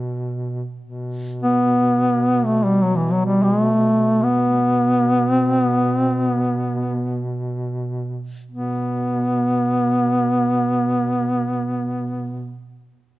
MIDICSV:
0, 0, Header, 1, 3, 480
1, 0, Start_track
1, 0, Tempo, 500000
1, 12663, End_track
2, 0, Start_track
2, 0, Title_t, "Duduk"
2, 0, Program_c, 0, 69
2, 1367, Note_on_c, 0, 59, 82
2, 2353, Note_on_c, 0, 57, 70
2, 2367, Note_off_c, 0, 59, 0
2, 2544, Note_on_c, 0, 55, 62
2, 2558, Note_off_c, 0, 57, 0
2, 2707, Note_on_c, 0, 54, 66
2, 2721, Note_off_c, 0, 55, 0
2, 2839, Note_on_c, 0, 52, 58
2, 2854, Note_off_c, 0, 54, 0
2, 2993, Note_on_c, 0, 54, 66
2, 3007, Note_off_c, 0, 52, 0
2, 3112, Note_off_c, 0, 54, 0
2, 3118, Note_on_c, 0, 55, 66
2, 3293, Note_on_c, 0, 56, 78
2, 3308, Note_off_c, 0, 55, 0
2, 3485, Note_off_c, 0, 56, 0
2, 3485, Note_on_c, 0, 57, 78
2, 4058, Note_on_c, 0, 59, 78
2, 4073, Note_off_c, 0, 57, 0
2, 5114, Note_off_c, 0, 59, 0
2, 5114, Note_on_c, 0, 60, 78
2, 5393, Note_off_c, 0, 60, 0
2, 5393, Note_on_c, 0, 59, 78
2, 5709, Note_off_c, 0, 59, 0
2, 5709, Note_on_c, 0, 60, 78
2, 5988, Note_off_c, 0, 60, 0
2, 5988, Note_on_c, 0, 59, 78
2, 7035, Note_off_c, 0, 59, 0
2, 8172, Note_on_c, 0, 59, 61
2, 12077, Note_off_c, 0, 59, 0
2, 12663, End_track
3, 0, Start_track
3, 0, Title_t, "Duduk"
3, 0, Program_c, 1, 69
3, 0, Note_on_c, 1, 47, 43
3, 617, Note_off_c, 1, 47, 0
3, 780, Note_on_c, 1, 47, 40
3, 8005, Note_off_c, 1, 47, 0
3, 8169, Note_on_c, 1, 47, 35
3, 12074, Note_off_c, 1, 47, 0
3, 12663, End_track
0, 0, End_of_file